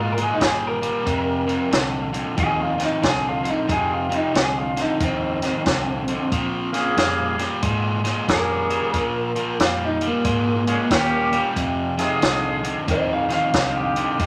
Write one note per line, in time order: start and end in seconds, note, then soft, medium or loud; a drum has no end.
0.00 0.26 G#2 medium
0.00 0.13 A#2 medium
0.00 0.13 G#3 medium
0.00 0.18 F4 medium
0.12 0.17 A#4 medium
0.17 0.38 A#2 medium
0.17 0.39 G#3 medium
0.17 closed hi-hat medium
0.23 0.35 G#4 medium
0.34 0.41 D#4 medium
0.40 0.91 G1 medium
0.40 0.78 A#2 medium
0.40 0.79 G3 medium
0.40 kick medium
0.40 snare loud
0.40 closed hi-hat medium
0.45 0.64 G#4 medium
0.67 1.92 A#4 medium
0.82 1.04 A#2 medium
0.82 1.04 G3 medium
0.82 closed hi-hat medium
1.05 1.57 F1 medium
1.05 1.44 F2 medium
1.05 1.44 C3 medium
1.05 kick medium
1.05 closed hi-hat medium
1.47 1.69 F2 medium
1.47 1.69 C3 medium
1.47 closed hi-hat medium
1.71 2.23 C2 medium
1.71 2.09 F2 medium
1.71 2.09 D3 medium
1.71 snare loud
1.71 closed hi-hat medium
2.13 2.35 F2 medium
2.13 2.35 D3 medium
2.13 closed hi-hat medium
2.37 2.88 D#2 medium
2.37 2.75 F2 medium
2.37 2.75 D#3 medium
2.37 2.60 G#4 loud
2.37 kick loud
2.37 closed hi-hat medium
2.61 2.82 F4 medium
2.78 3.00 F2 medium
2.78 3.00 D#3 medium
2.78 snare soft
2.78 closed hi-hat medium
2.84 3.04 D#4 medium
3.02 3.54 C2 medium
3.02 3.40 F2 medium
3.02 3.41 D3 medium
3.02 kick medium
3.02 snare loud
3.02 closed hi-hat medium
3.07 3.27 G#4 medium
3.29 3.48 F4 medium
3.43 3.66 F2 medium
3.43 3.66 D3 medium
3.43 closed hi-hat medium
3.50 3.70 D#4 medium
3.68 4.19 F1 medium
3.68 4.06 F2 medium
3.68 4.06 C3 medium
3.68 kick loud
3.68 closed hi-hat medium
3.72 3.92 G#4 medium
3.94 4.14 F4 medium
4.09 4.32 F2 medium
4.09 4.32 C3 medium
4.09 closed hi-hat medium
4.16 4.35 D#4 medium
4.34 4.85 C2 medium
4.34 4.72 F2 medium
4.34 4.72 D3 medium
4.34 4.57 G#4 loud
4.34 snare loud
4.34 closed hi-hat medium
4.59 4.79 F4 medium
4.76 4.98 F2 medium
4.76 4.98 D3 medium
4.76 snare soft
4.76 closed hi-hat medium
4.82 5.01 D#4 medium
5.00 5.51 D#2 medium
5.00 5.38 F2 medium
5.00 5.38 D#3 medium
5.00 6.95 C4 medium
5.00 kick medium
5.00 closed hi-hat medium
5.42 5.64 F2 medium
5.42 5.64 D#3 medium
5.42 snare soft
5.42 closed hi-hat medium
5.66 6.16 C2 medium
5.66 6.04 F2 medium
5.66 6.04 D3 medium
5.66 kick medium
5.66 snare loud
5.66 closed hi-hat medium
6.08 6.29 F2 medium
6.08 6.30 D3 medium
6.08 closed hi-hat medium
6.32 6.82 A#1 medium
6.32 6.70 A#2 medium
6.32 6.70 F3 medium
6.32 kick loud
6.32 closed hi-hat medium
6.73 6.95 A#2 medium
6.73 7.49 C#3 medium
6.73 6.95 F3 medium
6.73 7.48 A#3 medium
6.73 7.49 G#4 medium
6.73 snare soft
6.73 closed hi-hat medium
6.96 7.47 F2 medium
6.96 7.34 A#2 medium
6.96 7.35 G3 medium
6.96 snare loud
6.96 closed hi-hat medium
7.38 7.60 A#2 medium
7.38 7.60 G3 medium
7.38 snare soft
7.38 closed hi-hat medium
7.62 8.13 G#2 medium
7.62 8.00 A#2 medium
7.62 8.00 G#3 loud
7.62 kick loud
7.62 closed hi-hat medium
8.04 8.26 A#2 medium
8.04 8.26 G#3 medium
8.04 snare soft
8.04 closed hi-hat medium
8.27 8.79 F2 medium
8.27 8.66 A#2 medium
8.27 8.66 G3 medium
8.27 9.10 A#3 medium
8.27 9.10 C#4 medium
8.27 9.11 G#4 medium
8.27 kick medium
8.27 snare medium
8.27 closed hi-hat medium
8.32 9.57 A#4 medium
8.70 8.91 A#2 medium
8.70 8.92 G3 medium
8.70 closed hi-hat medium
8.93 9.44 A#1 medium
8.93 9.31 A#2 medium
8.93 9.32 F3 medium
8.93 kick loud
8.93 closed hi-hat medium
9.36 9.57 A#2 medium
9.36 9.57 F3 medium
9.36 closed hi-hat medium
9.59 10.10 F2 medium
9.59 9.97 A#2 medium
9.59 9.97 G3 medium
9.59 9.83 F4 medium
9.59 snare loud
9.59 closed hi-hat medium
9.85 10.04 D#4 medium
10.01 10.23 A#2 medium
10.01 10.23 G3 medium
10.01 closed hi-hat medium
10.07 11.33 A#3 loud
10.25 10.75 G#2 medium
10.25 10.63 A#2 medium
10.25 10.63 G#3 medium
10.25 kick loud
10.25 closed hi-hat medium
10.65 10.89 A#2 medium
10.65 10.89 G#3 medium
10.65 10.80 A#3 medium
10.65 10.81 C#4 medium
10.65 10.81 G#4 medium
10.65 closed hi-hat medium
10.89 11.41 D#2 medium
10.89 11.28 A#2 medium
10.89 11.29 G3 loud
10.89 11.51 A#3 medium
10.89 11.52 C#4 medium
10.89 11.52 G4 loud
10.89 kick medium
10.89 snare loud
10.89 closed hi-hat medium
11.32 11.54 A#2 medium
11.32 11.54 G3 medium
11.32 closed hi-hat medium
11.56 12.07 F1 medium
11.56 11.94 F2 medium
11.56 11.94 C3 medium
11.56 kick medium
11.56 closed hi-hat medium
11.97 12.19 F2 medium
11.97 12.20 C3 medium
11.97 12.73 D#4 loud
11.97 12.74 F4 medium
11.97 12.74 G#4 loud
11.97 snare soft
11.97 closed hi-hat medium
12.21 12.73 C2 medium
12.21 12.60 F2 medium
12.21 12.60 D3 medium
12.21 snare loud
12.21 closed hi-hat medium
12.63 12.85 F2 medium
12.63 12.85 D3 medium
12.63 closed hi-hat medium
12.87 13.39 D#2 medium
12.87 13.26 F2 medium
12.87 13.26 D#3 medium
12.87 13.12 C5 medium
12.87 kick loud
12.87 closed hi-hat medium
12.92 13.12 D#5 loud
13.13 13.32 G#4 medium
13.13 13.32 F5 medium
13.29 13.51 F2 medium
13.29 13.51 D#3 medium
13.29 snare soft
13.29 closed hi-hat medium
13.34 13.97 F5 loud
13.53 14.04 C2 medium
13.53 13.92 F2 medium
13.53 13.92 D3 medium
13.53 14.26 D#4 medium
13.53 14.26 F4 medium
13.53 14.26 G4 medium
13.53 kick medium
13.53 snare loud
13.53 closed hi-hat medium
13.96 14.18 F2 medium
13.96 14.18 D3 medium
13.96 closed hi-hat medium
14.19 14.26 F1 medium
14.19 14.26 F2 medium
14.19 14.26 C3 medium
14.19 kick medium
14.19 closed hi-hat medium